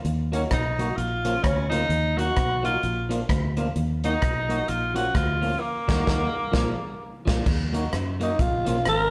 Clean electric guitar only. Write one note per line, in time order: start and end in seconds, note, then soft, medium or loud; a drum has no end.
0.32 0.41 F#3 medium
0.32 0.41 A#3 medium
0.32 0.42 D#4 medium
0.32 0.42 F#4 medium
0.79 0.88 F#3 medium
0.79 0.88 A#3 medium
0.79 0.89 D#4 medium
0.79 0.89 F#4 medium
1.25 1.34 F3 medium
1.25 1.34 A#3 medium
1.25 1.34 C#4 loud
1.25 1.34 F4 loud
1.70 1.80 F3 medium
1.70 1.80 A#3 medium
1.70 1.80 C#4 medium
1.70 1.81 F4 medium
2.17 2.26 F#3 medium
2.17 2.26 A#3 medium
2.17 2.27 D#4 medium
2.17 2.27 F#4 medium
2.63 2.72 F#3 medium
2.63 2.73 A#3 medium
2.63 2.73 D#4 medium
2.63 2.73 F#4 medium
3.09 3.19 F3 medium
3.09 3.19 A#3 loud
3.09 3.19 D4 loud
3.09 3.20 F4 loud
3.29 muted clean electric guitar stroke soft
3.57 3.66 F3 medium
3.57 3.66 A#3 medium
3.57 3.66 D4 medium
3.57 3.67 F4 medium
4.04 4.13 F#3 medium
4.04 4.13 A#3 medium
4.04 4.13 D#4 medium
4.04 4.13 F#4 medium
4.49 4.58 F#3 medium
4.49 4.58 A#3 medium
4.49 4.59 D#4 medium
4.49 4.59 F#4 medium
4.94 5.04 F3 loud
4.94 5.04 A#3 medium
4.94 5.05 C#4 loud
4.94 5.05 F4 medium
5.41 5.51 F3 medium
5.41 5.51 A#3 medium
5.41 5.52 C#4 medium
5.41 5.52 F4 medium
5.88 6.01 F#3 loud
5.88 6.02 A#3 loud
5.88 6.02 D#4 loud
5.88 6.02 F#4 loud
6.06 6.25 F#3 loud
6.06 6.25 A#3 loud
6.06 6.26 D#4 loud
6.06 6.26 F#4 loud
6.52 6.71 F3 loud
6.52 6.72 A#3 loud
6.52 6.72 D4 medium
6.52 6.73 F4 loud
7.25 7.39 F3 loud
7.25 7.40 A#3 medium
7.25 7.40 D4 medium
7.25 7.41 F4 medium
7.73 7.82 F#3 medium
7.73 7.82 A#3 medium
7.73 7.83 D#4 loud
7.73 7.83 F#4 medium
8.20 8.29 F#3 medium
8.20 8.30 A#3 medium
8.20 8.30 D#4 medium
8.20 8.31 F#4 medium
8.65 8.75 F3 medium
8.65 8.76 A#3 loud
8.65 8.76 C#4 medium
8.65 8.76 F4 loud